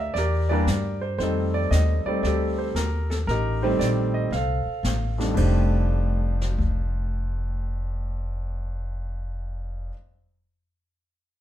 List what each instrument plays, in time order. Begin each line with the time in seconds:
Already playing: upright bass D2, grand piano G4 A#4 D5 E5
0.14 upright bass E2, grand piano D5, brush sweep, snare
0.18 grand piano G4 A#4
0.49 grand piano E3 G3 A#3 D4 G4 A#4 D5
0.66 upright bass G2, snare, hi-hat pedal
1.01 grand piano C5
1.18 upright bass F2, grand piano D#3 G3 A3 C4 C5, brush sweep, snare
1.23 grand piano D#4 A4
1.54 grand piano D5
1.71 upright bass D#2, grand piano D#5, snare, hi-hat pedal
2.06 grand piano G3 A3 C4 D#4 D5, muted upright bass stroke
2.23 upright bass D2, grand piano A4 D5, brush sweep, snare
2.27 grand piano G4
2.58 grand piano C5
2.75 upright bass D#2, grand piano A#4, snare, hi-hat pedal
3.10 grand piano A4, snare
3.27 upright bass A1, grand piano D#4 G4 A#4, brush sweep, snare
3.62 grand piano D#3 G3 A3 C4 C5
3.79 upright bass A#1, grand piano D5, snare, hi-hat pedal
4.14 grand piano D#5
4.31 upright bass C2, grand piano F5, brush sweep, snare
4.35 grand piano A4 C5
4.66 muted upright bass stroke
4.83 upright bass A1, snare, hi-hat pedal
5.18 grand piano F2 D#3 G3 A3 D4, snare
5.34 upright bass F1, grand piano F2 D#3 G3 A3 D4 C5, kick, crash
6.41 snare
6.59 kick